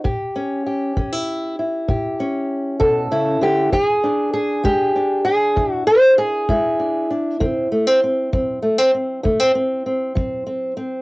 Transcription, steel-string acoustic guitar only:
0.04 0.60 A2 medium
0.04 0.65 G4 medium
0.36 0.96 C#4 soft
0.66 1.88 G4 soft
0.97 1.52 E3 medium
0.97 1.12 C#4 soft
1.12 1.58 E4 soft
1.59 3.10 E4 soft
1.88 2.44 A2 medium
1.88 2.79 G4 soft
2.20 3.69 C#4 medium
2.80 3.11 B2 medium
2.80 3.42 A4 medium
3.11 3.41 C#3 medium
3.11 3.73 E4 medium
3.41 3.72 D3 medium
3.41 3.73 G4 medium
3.72 4.28 E3 medium
3.72 4.32 G#4 loud
4.04 4.95 D4 soft
4.34 5.23 G#4 medium
4.63 5.19 G#3 medium
4.63 5.26 G4 loud
4.96 6.78 D4 soft
5.25 5.73 G#4 loud
5.56 6.12 E3 medium
5.56 6.49 E4 soft
5.73 5.86 F#4 loud
5.87 6.18 C5 loud
6.18 7.10 G#4 loud
6.49 7.04 G#3 medium
6.49 11.02 E4 medium
6.80 7.09 D4 soft
7.10 7.37 D4 soft
7.40 7.96 D3 medium
7.40 7.71 C4 medium
7.72 7.87 A3 medium
7.87 8.02 C4 soft
8.04 8.32 C4 soft
8.33 8.88 F#3 medium
8.33 8.62 C4 soft
8.62 8.78 A3 soft
8.78 8.93 C4 soft
8.94 9.23 C4 soft
9.23 9.79 D3 medium
9.23 9.40 A3 soft
9.40 9.54 C4 soft
9.55 9.85 C4 medium
9.86 10.15 C4 soft
10.15 10.71 F#3 medium
10.15 10.45 C4 soft
10.47 10.76 C4 soft
10.77 11.02 C4 medium

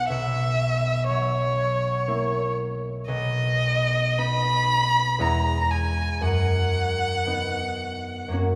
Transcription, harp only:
0.00 1.08 F#3 soft
0.00 0.14 B3 soft
0.00 0.14 D#4 soft
0.10 3.07 B1 soft
1.10 5.00 F#3 soft
2.08 3.12 A#3 soft
2.08 3.13 E4 soft
3.08 5.24 B1 soft
4.18 5.18 B3 soft
4.18 5.24 D#4 soft
5.18 6.26 E2 soft
5.18 6.26 G#3 soft
5.18 5.23 B3 soft
5.18 6.26 E4 soft
6.21 8.28 F#2 soft
7.26 8.36 B3 soft
7.26 8.36 D#4 soft
8.28 8.55 F#2 soft
8.28 8.55 A#3 soft
8.32 8.36 C#4 soft
8.32 8.35 F#4 soft
8.32 8.39 F#4 soft

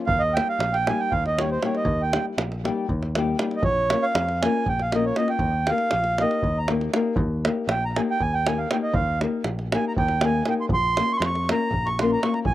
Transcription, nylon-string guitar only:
0.36 0.56 G3 soft
0.36 0.56 A#3 medium
0.36 0.57 D#4 soft
0.36 0.57 G4 medium
0.89 1.08 G3 medium
0.89 1.09 A#3 medium
0.89 1.09 D#4 medium
0.89 1.09 G4 medium
1.38 1.58 G3 medium
1.38 1.58 A#3 medium
1.38 1.58 D#4 medium
1.38 1.59 G4 medium
1.63 1.82 G3 medium
1.63 1.82 A#3 medium
1.63 1.83 D#4 medium
1.63 1.83 G4 medium
2.13 2.33 G3 soft
2.13 2.34 A#3 soft
2.13 2.34 D#4 soft
2.13 2.34 G4 medium
2.64 2.85 G3 medium
2.64 2.85 A#3 medium
2.64 2.85 D#4 medium
2.64 2.85 G4 medium
3.16 3.36 G3 medium
3.16 3.36 A#3 medium
3.16 3.36 D#4 medium
3.16 3.36 G4 loud
3.40 3.60 G3 medium
3.40 3.60 A#3 medium
3.40 3.60 D#4 medium
3.40 3.61 G4 medium
3.92 4.12 A#3 medium
3.92 4.12 C#4 soft
3.92 4.12 F4 medium
3.92 4.12 A#4 medium
4.43 4.63 A#3 medium
4.43 4.63 C#4 medium
4.43 4.64 F4 medium
4.43 4.64 A#4 medium
4.94 5.13 A#3 medium
4.94 5.14 C#4 medium
4.94 5.14 F4 medium
4.94 5.14 A#4 medium
5.17 5.37 A#3 medium
5.17 5.38 C#4 medium
5.17 5.38 F4 medium
5.17 5.38 A#4 medium
5.69 5.88 A#3 medium
5.69 5.89 D#4 soft
5.69 5.89 G4 soft
5.69 5.90 A#4 medium
6.20 6.40 A#3 medium
6.20 6.41 D#4 medium
6.20 6.40 G4 medium
6.20 6.41 A#4 medium
6.69 6.89 A#3 medium
6.69 6.90 D#4 medium
6.69 6.90 G4 medium
6.69 6.90 A#4 medium
6.94 7.13 A#3 medium
6.94 7.13 D#4 medium
6.94 7.13 G4 medium
6.94 7.14 A#4 medium
7.45 7.65 A#3 medium
7.45 7.65 D#4 medium
7.45 7.65 G4 medium
7.45 7.66 A#4 medium
7.97 8.16 A#3 medium
7.97 8.17 D#4 medium
7.97 8.17 G4 medium
7.97 8.17 A#4 medium
8.47 8.66 A#3 medium
8.47 8.66 D#4 medium
8.47 8.66 G4 medium
8.47 8.67 A#4 medium
8.71 8.90 A#3 medium
8.71 8.91 D#4 medium
8.71 8.91 G4 medium
8.71 8.91 A#4 medium
9.21 9.41 A#3 medium
9.21 9.42 D#4 medium
9.21 9.42 G4 soft
9.21 9.42 A#4 medium
9.73 9.93 A#3 medium
9.73 9.93 D#4 medium
9.73 9.93 G4 medium
9.73 9.94 A#4 medium
10.23 10.42 A#3 medium
10.23 10.42 D#4 medium
10.23 10.42 G4 medium
10.23 10.43 A#4 medium
10.47 10.66 A#3 medium
10.47 10.66 D#4 medium
10.47 10.66 G4 medium
10.47 10.66 A#4 medium
10.98 11.17 A#3 soft
10.98 11.17 C#4 soft
10.98 11.18 F4 medium
10.98 11.18 A#4 medium
11.49 11.68 A#3 medium
11.49 11.69 C#4 medium
11.49 11.69 F4 medium
11.49 11.70 A#4 medium
12.01 12.19 A#3 medium
12.01 12.19 C#4 medium
12.01 12.20 F4 medium
12.01 12.20 A#4 medium
12.24 12.42 A#3 medium
12.24 12.42 C#4 soft
12.24 12.42 F4 medium
12.24 12.43 A#4 medium

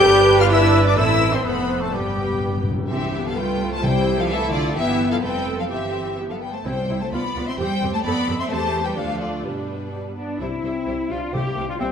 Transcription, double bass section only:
0.04 0.95 G1 medium
0.96 1.44 A1 medium
1.44 1.92 F1 medium
1.92 2.69 G1 medium
2.89 4.71 C2 medium
4.75 5.19 G1 medium
5.22 5.69 F1 medium
5.70 6.45 G1 medium
6.64 6.72 C2 medium
6.88 6.96 C2 medium
7.11 7.19 D2 medium
7.35 7.43 D2 medium
7.58 7.66 E2 medium
7.82 7.90 E2 medium
8.04 8.12 F2 medium
8.27 8.35 F2 medium
8.50 8.94 E2 medium
8.97 9.44 D2 medium
9.44 10.20 G2 soft
10.39 10.47 C2 soft
10.64 10.72 C2 soft
10.86 10.94 C2 soft
11.11 11.19 C2 soft
11.33 11.41 C2 medium
11.56 11.64 C2 medium
11.80 11.88 C2 medium

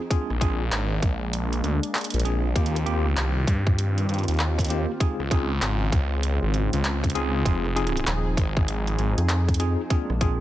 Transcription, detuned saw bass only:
0.30 0.70 A#1 medium
0.72 1.01 G#1 loud
1.02 1.62 A#1 loud
1.64 1.80 D2 medium
2.14 2.54 A#1 medium
2.56 2.98 D#2 loud
2.98 3.15 D2 loud
3.17 3.46 C2 loud
3.47 4.07 G2 loud
4.09 4.25 G2 medium
4.28 4.86 D#2 medium
5.20 5.60 C#2 loud
5.62 5.91 G#1 medium
5.92 6.39 C#2 loud
6.42 6.70 G#1 medium
6.73 7.13 C#2 loud
7.15 7.44 C#2 loud
7.45 8.05 F1 loud
8.37 8.97 G#1 loud
8.98 9.15 G#1 loud

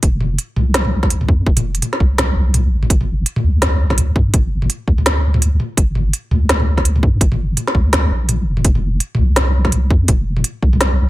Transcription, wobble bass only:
0.03 0.38 F1 medium
0.56 1.30 C2 loud
1.29 1.45 F2 medium
1.47 1.81 F1 medium
2.00 2.35 C2 loud
2.36 2.74 C2 medium
2.72 2.89 A1 medium
2.90 3.25 G1 loud
3.44 4.17 D2 loud
4.16 4.33 G2 loud
4.34 4.69 G1 medium
4.88 5.59 D2 loud
5.77 6.12 G1 loud
6.31 7.04 D2 loud
7.03 7.20 G2 loud
7.21 7.56 G1 loud
7.75 8.10 D2 loud
8.11 8.48 A#1 loud
8.47 8.64 F1 medium
8.65 9.00 F1 loud
9.19 9.92 C2 loud
9.90 10.07 F2 loud
10.08 10.44 F1 medium
10.63 11.09 C2 loud

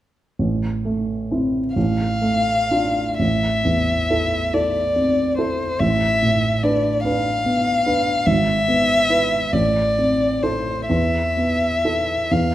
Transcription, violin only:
1.76 3.15 F5 medium
3.20 4.55 E5 medium
4.54 5.37 D5 soft
5.38 5.81 C5 soft
5.80 6.65 E5 medium
6.63 7.04 D5 soft
7.04 8.28 F5 medium
8.27 9.54 E5 medium
9.53 10.44 D5 medium
10.43 10.88 C5 soft
10.89 12.33 E5 medium
12.32 12.55 F5 medium

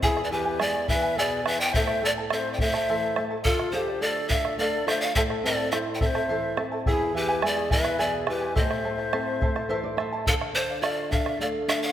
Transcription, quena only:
0.03 0.23 E4 medium
0.25 0.32 B4 soft
0.31 0.61 G4 medium
0.59 0.88 G#4 medium
0.89 1.18 B4 medium
1.16 1.21 A4 medium
1.20 1.44 G#4 medium
1.45 1.61 B4 medium
1.59 1.74 D5 medium
1.73 2.02 C5 medium
2.02 2.09 A4 medium
2.31 2.51 C5 medium
2.31 2.36 D5 medium
2.52 2.60 D5 medium
2.60 3.24 C5 medium
2.60 2.64 D5 medium
3.45 3.75 F4 medium
3.74 3.79 G#4 medium
3.78 4.04 G4 medium
4.02 4.31 A4 medium
4.31 4.59 A4 medium
4.60 4.86 A4 medium
4.60 4.64 B4 medium
4.88 5.02 C5 medium
5.01 5.15 D5 medium
5.16 5.22 C5 medium
5.45 5.71 A4 medium
5.74 5.80 C5 medium
5.94 6.02 D5 medium
6.02 6.07 D5 medium
6.06 6.65 C5 medium
6.87 7.13 E4 medium
7.15 7.45 G4 medium
7.43 7.49 A4 medium
7.48 7.74 G#4 medium
7.72 8.02 B4 medium
8.00 8.05 A4 medium
8.04 8.27 G#4 medium
8.28 8.54 G4 medium
8.56 9.94 C5 medium

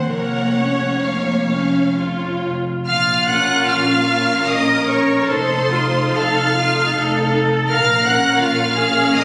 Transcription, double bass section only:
0.10 2.62 F1 soft
2.87 3.59 A#1 medium
3.68 4.38 A#1 medium
4.48 5.19 A#1 medium
5.29 6.06 F1 medium
6.17 6.86 F1 medium
6.95 7.61 F1 medium
7.70 8.34 A#1 medium
8.42 9.07 A#1 medium
9.17 9.24 A#1 medium

